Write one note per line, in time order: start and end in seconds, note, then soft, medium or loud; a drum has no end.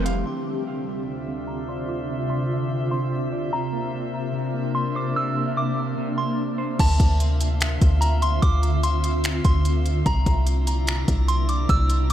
0.00 0.24 F1 loud
0.00 0.23 E3 medium
0.00 0.27 F3 medium
0.00 0.23 G3 medium
0.00 0.26 A3 medium
0.00 0.23 C4 medium
0.00 0.23 G4 medium
0.00 0.23 A4 medium
0.00 0.23 G5 medium
0.06 0.26 F5 loud
0.06 closed hi-hat medium
0.26 3.49 D2 medium
0.26 6.75 C3 medium
0.26 0.66 D3 medium
0.26 3.49 D4 medium
0.26 3.49 F4 medium
0.26 6.75 C5 medium
0.26 6.75 E5 medium
0.26 0.65 A5 loud
0.46 1.27 C4 medium
0.67 1.06 D3 medium
1.08 1.88 D3 medium
1.28 2.09 C4 medium
1.47 1.67 A#5 medium
1.69 2.92 D5 medium
1.69 1.88 C6 medium
1.89 2.29 D3 medium
1.89 2.27 D6 loud
2.10 2.90 C4 medium
2.30 2.70 D3 medium
2.30 2.88 C6 medium
2.71 3.53 D3 medium
2.91 3.53 C4 medium
2.91 3.11 C6 medium
3.32 3.53 D5 medium
3.53 3.92 C3 medium
3.53 6.76 A#3 medium
3.53 6.76 D4 medium
3.53 6.76 A#4 medium
3.53 3.91 A#5 medium
3.73 4.53 A#3 medium
3.94 4.33 C3 medium
4.34 5.15 C3 medium
4.54 5.35 A#3 medium
4.75 4.94 C6 medium
4.95 6.18 C5 medium
4.95 5.15 D6 medium
5.16 5.55 C3 medium
5.16 5.55 E6 loud
5.36 6.17 A#3 medium
5.57 5.96 C3 medium
5.57 6.15 D6 medium
5.98 6.79 C3 medium
6.18 6.79 A#3 medium
6.18 6.37 C6 medium
6.58 6.79 C5 medium
6.79 6.99 D2 loud
6.79 10.03 D3 medium
6.79 10.03 C4 medium
6.79 10.03 F4 medium
6.79 10.02 E5 medium
6.79 10.03 E5 medium
6.79 7.18 A5 loud
6.79 10.03 C6 medium
6.79 kick loud
6.79 closed hi-hat medium
6.79 crash loud
7.00 7.78 D2 loud
7.00 kick loud
7.00 closed hi-hat medium
7.20 closed hi-hat medium
7.41 closed hi-hat medium
7.61 finger snap loud
7.61 closed hi-hat medium
7.81 8.40 D2 loud
7.81 kick loud
7.81 closed hi-hat medium
8.01 8.21 A#5 medium
8.01 closed hi-hat medium
8.22 8.42 C6 medium
8.22 closed hi-hat medium
8.42 9.41 D2 loud
8.42 8.81 D6 loud
8.42 kick loud
8.42 closed hi-hat medium
8.63 closed hi-hat medium
8.83 9.41 C6 medium
8.83 closed hi-hat medium
9.04 closed hi-hat medium
9.24 finger snap loud
9.24 closed hi-hat medium
9.45 10.04 D2 loud
9.45 9.64 C6 medium
9.45 kick loud
9.45 closed hi-hat medium
9.65 closed hi-hat medium
9.86 closed hi-hat medium
10.06 10.26 C2 loud
10.06 12.13 C3 medium
10.06 12.13 A#3 medium
10.06 12.13 D4 medium
10.06 12.13 E4 medium
10.06 12.13 D5 medium
10.06 10.44 A#5 loud
10.06 12.13 A#5 medium
10.06 kick loud
10.06 closed hi-hat medium
10.26 11.05 C2 loud
10.26 kick loud
10.26 closed hi-hat medium
10.47 closed hi-hat medium
10.67 closed hi-hat medium
10.87 finger snap loud
10.87 closed hi-hat medium
11.08 11.67 C2 loud
11.08 kick loud
11.08 closed hi-hat medium
11.28 11.48 C6 medium
11.28 closed hi-hat medium
11.49 11.68 D6 medium
11.49 closed hi-hat medium
11.69 12.13 C2 loud
11.69 12.08 E6 loud
11.69 kick loud
11.69 closed hi-hat medium
11.90 closed hi-hat medium